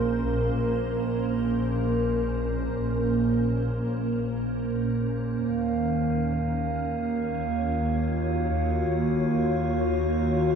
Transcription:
0.00 5.36 A#1 medium
0.00 5.42 A#2 medium
0.00 5.42 A#3 medium
0.00 10.55 A#3 medium
0.00 7.68 C#4 medium
0.00 6.83 A#4 medium
0.00 10.55 A#4 medium
0.00 5.42 C5 medium
5.41 10.55 D#2 medium
5.41 10.55 D#3 medium
5.41 10.55 F5 medium
6.03 10.55 A#3 medium
7.00 10.55 C#5 medium
7.23 10.55 F4 medium
8.13 10.55 F#4 medium

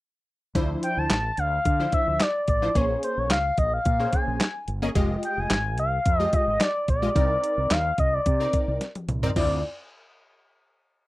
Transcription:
0.55 0.75 D2 loud
0.55 1.15 F3 medium
0.55 1.15 D4 medium
0.55 1.15 E4 medium
0.55 1.15 C5 loud
0.55 kick loud
0.55 closed hi-hat medium
0.83 0.99 G5 loud
0.83 closed hi-hat medium
0.97 1.07 D2 medium
0.97 1.40 A5 loud
1.10 1.30 A1 medium
1.10 snare loud
1.10 clap loud
1.10 closed hi-hat medium
1.37 1.57 D2 medium
1.37 1.93 F5 loud
1.37 closed hi-hat medium
1.65 1.85 D3 loud
1.65 kick loud
1.65 closed hi-hat medium
1.80 2.24 F3 medium
1.80 2.24 D4 medium
1.80 2.24 E4 medium
1.80 2.24 C5 medium
1.92 2.07 E5 medium
1.92 kick loud
1.92 closed hi-hat medium
2.08 2.17 D2 medium
2.08 2.23 E5 medium
2.20 2.48 D5 loud
2.20 snare loud
2.20 clap medium
2.20 closed hi-hat medium
2.48 2.68 A1 medium
2.48 2.78 D5 loud
2.48 kick loud
2.48 closed hi-hat medium
2.62 2.69 F3 medium
2.62 2.69 D4 medium
2.62 2.70 E4 medium
2.62 2.70 C5 medium
2.75 2.95 A#1 loud
2.75 3.35 A#3 medium
2.75 3.35 C#4 medium
2.75 3.35 G#4 medium
2.75 3.35 C5 medium
2.75 3.03 C#5 medium
2.75 kick loud
2.75 closed hi-hat medium
3.03 3.20 C5 medium
3.03 closed hi-hat medium
3.17 3.30 A#1 medium
3.17 3.31 C#5 medium
3.30 3.50 C#2 loud
3.30 3.57 F5 loud
3.30 snare loud
3.30 clap loud
3.30 closed hi-hat loud
3.58 3.78 A#1 loud
3.58 3.72 D#5 medium
3.58 kick medium
3.58 closed hi-hat medium
3.74 4.16 F5 loud
3.85 4.05 A#2 loud
3.85 kick loud
3.85 closed hi-hat medium
4.00 4.44 A#3 medium
4.00 4.44 C#4 medium
4.00 4.44 G#4 medium
4.00 4.44 C5 medium
4.13 4.69 G#5 medium
4.13 kick loud
4.13 closed hi-hat medium
4.28 4.37 A#1 medium
4.40 snare loud
4.40 clap medium
4.40 closed hi-hat medium
4.68 4.88 G1 medium
4.68 closed hi-hat medium
4.82 4.89 A#3 loud
4.82 4.90 C#4 medium
4.82 4.90 G#4 medium
4.82 4.90 D#5 loud
4.95 5.15 F1 loud
4.95 5.55 G#3 loud
4.95 5.55 F4 medium
4.95 5.55 G4 medium
4.95 5.55 D#5 loud
4.95 kick loud
4.95 closed hi-hat medium
5.23 5.41 G5 loud
5.23 closed hi-hat medium
5.38 5.47 F1 medium
5.38 5.79 G#5 loud
5.50 5.78 G#1 loud
5.50 snare loud
5.50 clap loud
5.50 closed hi-hat medium
5.78 5.98 C2 medium
5.78 6.19 F5 loud
5.78 closed hi-hat medium
6.06 6.25 F2 loud
6.06 kick loud
6.06 closed hi-hat medium
6.19 6.64 G#3 medium
6.19 6.64 F4 medium
6.19 6.64 G4 medium
6.19 6.34 D#5 loud
6.19 6.64 D#5 medium
6.33 6.48 D#5 medium
6.33 kick loud
6.33 closed hi-hat medium
6.48 6.57 G#1 medium
6.48 6.63 D#5 medium
6.60 6.89 D5 medium
6.60 snare loud
6.60 clap medium
6.60 closed hi-hat medium
6.88 7.08 A#1 medium
6.88 7.73 D5 loud
6.88 kick loud
6.88 closed hi-hat medium
7.02 7.09 G#3 medium
7.02 7.10 F4 medium
7.02 7.10 G4 medium
7.02 7.10 D#5 medium
7.15 7.35 C2 loud
7.15 7.75 C4 medium
7.15 7.75 D#4 medium
7.15 7.75 A#4 medium
7.15 7.75 D5 medium
7.15 kick loud
7.15 closed hi-hat medium
7.44 closed hi-hat medium
7.58 7.67 C2 medium
7.71 7.90 D#2 medium
7.71 7.99 F5 loud
7.71 snare loud
7.71 clap loud
7.71 closed hi-hat loud
7.98 8.18 C2 medium
7.98 8.15 D#5 medium
7.98 kick medium
7.98 closed hi-hat medium
8.14 8.81 D5 medium
8.26 8.46 C3 loud
8.26 kick loud
8.26 closed hi-hat loud
8.40 8.84 C4 medium
8.40 8.84 D#4 medium
8.40 8.84 A#4 medium
8.40 8.84 D5 medium
8.53 kick loud
8.53 closed hi-hat medium
8.68 8.77 C2 medium
8.81 snare medium
8.81 closed hi-hat medium
8.95 closed hi-hat medium
8.95 high tom medium
9.08 9.28 C2 medium
9.08 closed hi-hat medium
9.08 mid tom medium
9.23 9.30 C4 loud
9.23 9.30 D#4 medium
9.23 9.30 A#4 medium
9.23 9.30 D5 loud
9.23 floor tom medium
9.36 9.62 D2 medium
9.36 9.62 C4 medium
9.36 9.62 E4 medium
9.36 9.62 F4 medium
9.36 9.62 D5 medium
9.36 kick loud
9.36 crash medium

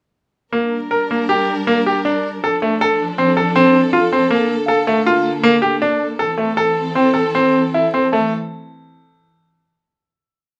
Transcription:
0.52 2.41 G3 medium
0.52 0.76 A#3 medium
0.52 2.39 D4 medium
0.52 2.40 A#4 medium
0.91 1.03 A#4 medium
1.11 1.22 A#3 medium
1.29 1.52 G4 medium
1.67 1.79 A#3 medium
1.86 1.98 G4 medium
2.05 2.28 D4 medium
2.40 4.27 F3 medium
2.40 4.27 D4 medium
2.40 6.15 A4 medium
2.40 2.55 A4 medium
2.62 2.73 A3 medium
2.81 3.04 A4 medium
3.18 3.29 C4 medium
3.37 3.48 A4 medium
3.56 3.78 C4 medium
3.93 4.04 F4 medium
4.12 4.24 C4 medium
4.31 6.17 D3 medium
4.31 4.53 A#3 medium
4.31 6.17 A#3 medium
4.66 4.80 A4 medium
4.66 5.62 F5 medium
4.87 4.98 A3 medium
5.06 5.29 F4 medium
5.44 5.55 A#3 medium
5.62 5.73 G4 medium
5.82 6.04 D4 medium
6.19 8.11 E3 medium
6.19 8.11 C4 medium
6.19 6.31 A4 medium
6.19 8.11 A4 medium
6.38 6.49 A3 medium
6.57 6.80 A4 medium
6.95 7.07 C4 medium
6.95 7.94 G5 soft
7.14 7.26 A4 medium
7.35 7.58 C4 medium
7.74 7.86 E4 medium
7.94 8.05 C4 medium
8.12 8.30 E3 medium
8.12 8.31 A3 medium
8.12 8.30 C4 soft
8.12 8.30 A4 medium
8.12 9.99 A5 soft

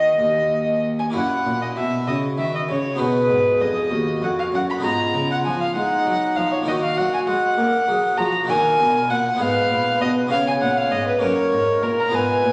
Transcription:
0.00 0.15 D#3 medium
0.00 0.17 D#3 medium
0.00 1.08 A#3 soft
0.00 1.09 D#4 medium
0.00 1.10 F#4 medium
0.00 0.80 D#5 medium
0.00 0.83 D#5 medium
0.19 1.13 D#2 medium
0.19 1.11 D#2 soft
0.99 1.05 G#5 medium
1.10 1.73 A#3 soft
1.10 2.94 E4 soft
1.10 2.95 F#4 soft
1.14 1.43 F#2 medium
1.14 1.43 F#2 soft
1.14 1.60 F#5 medium
1.45 1.74 A#2 medium
1.45 1.74 A#2 soft
1.62 1.68 D#5 medium
1.76 2.05 B2 medium
1.76 2.04 B2 soft
1.76 2.07 E5 medium
2.07 2.36 C#3 medium
2.07 2.35 C#3 soft
2.07 2.96 F#4 medium
2.07 2.16 D#5 medium
2.38 2.66 D#3 soft
2.38 2.67 D#3 soft
2.38 2.53 E5 medium
2.55 2.61 D#5 medium
2.69 2.96 C#3 soft
2.69 2.98 C#3 medium
2.69 3.01 C#5 medium
2.95 4.78 B3 soft
2.95 4.78 D#4 soft
2.95 4.79 F#4 soft
2.95 3.92 G#4 medium
2.99 3.27 B2 soft
2.99 3.28 B2 medium
2.99 3.63 B4 medium
3.29 3.57 G#2 soft
3.29 3.58 G#2 medium
3.60 3.89 F2 medium
3.60 3.88 F2 soft
3.60 4.22 D#5 medium
3.90 4.20 D#2 medium
3.90 4.19 D#2 soft
3.90 4.85 F#4 medium
4.21 4.50 F2 medium
4.21 4.50 F2 soft
4.21 4.29 F#5 medium
4.39 4.45 F5 medium
4.52 4.81 F#2 medium
4.52 4.80 F#2 soft
4.52 4.60 F#5 medium
4.70 4.76 B5 medium
4.79 6.61 B3 soft
4.79 6.62 D#4 soft
4.79 6.62 G#4 soft
4.83 5.11 G#2 soft
4.83 5.12 G#2 medium
4.83 5.76 F4 medium
4.83 5.29 A#5 medium
5.14 5.43 C#3 medium
5.14 5.42 C#3 soft
5.31 5.37 F#5 medium
5.44 5.74 F3 medium
5.44 5.73 F3 soft
5.44 5.60 G#5 medium
5.61 5.74 F5 medium
5.75 6.04 G#3 medium
5.75 6.03 G#3 soft
5.75 6.66 D#4 medium
5.75 6.37 F#5 medium
6.06 6.35 F#3 medium
6.06 6.34 F#3 soft
6.36 6.65 F3 medium
6.36 6.65 F3 soft
6.36 6.51 F5 medium
6.52 6.58 C#5 medium
6.62 7.24 A#3 soft
6.62 8.44 D#4 soft
6.62 8.44 F#4 soft
6.62 7.56 F#4 medium
6.67 6.95 D#3 medium
6.67 6.96 D#3 medium
6.67 6.74 D#5 medium
6.83 6.98 F5 medium
6.97 7.25 F#3 medium
6.97 7.26 F#3 medium
6.97 7.13 F#5 medium
7.14 7.20 G#5 medium
7.27 7.56 G#3 medium
7.27 7.55 G#3 medium
7.27 8.19 F#5 medium
7.57 7.86 A#3 medium
7.57 7.85 A#3 soft
7.57 7.87 A#4 medium
7.88 8.16 F#3 medium
7.88 8.20 G#4 medium
8.18 8.47 F3 medium
8.18 8.46 F3 medium
8.18 8.48 F#4 medium
8.18 8.33 A#5 medium
8.44 8.76 A#3 soft
8.44 9.36 D#4 soft
8.44 9.36 F#4 medium
8.48 8.76 D#3 medium
8.48 8.77 D#3 medium
8.48 9.11 A#4 medium
8.48 9.12 G#5 loud
8.79 9.08 B2 medium
8.79 9.07 B2 medium
9.09 9.37 A#2 medium
9.09 9.38 A#2 medium
9.09 9.42 F#5 medium
9.36 9.68 G#2 medium
9.36 10.26 B3 soft
9.36 10.27 D#4 soft
9.36 10.28 G#4 soft
9.40 9.68 G#2 soft
9.40 10.27 B4 medium
9.40 10.01 F5 loud
9.69 9.98 A#2 medium
9.69 9.98 A#2 soft
10.00 10.29 B2 medium
10.00 10.28 B2 medium
10.00 10.09 D#5 medium
10.27 10.58 C#3 medium
10.27 11.17 B3 soft
10.27 11.18 C#4 soft
10.27 11.18 G#4 soft
10.31 10.58 C#3 medium
10.31 11.20 C#5 medium
10.31 10.46 F5 loud
10.48 10.54 G#5 medium
10.61 10.89 A#2 medium
10.61 10.79 F#5 medium
10.77 10.93 F5 medium
10.91 11.19 G#2 medium
10.91 11.07 D#5 medium
11.07 11.21 B4 medium
11.19 11.50 F#2 medium
11.19 11.49 A#3 soft
11.19 11.50 C#4 soft
11.19 12.11 A#4 medium
11.19 12.10 A#4 soft
11.19 11.84 C#5 medium
11.23 11.50 F#2 soft
11.52 11.80 G#2 medium
11.82 12.10 A#2 medium
11.82 12.01 A#4 medium
11.99 12.16 A#5 medium
12.09 12.53 B3 soft
12.09 12.53 F4 soft
12.09 12.53 G#4 soft
12.13 12.42 G#2 medium
12.13 12.41 G#2 soft
12.13 12.53 B4 medium
12.13 12.53 G#5 medium
12.43 12.53 A#2 medium
12.43 12.53 A#2 soft

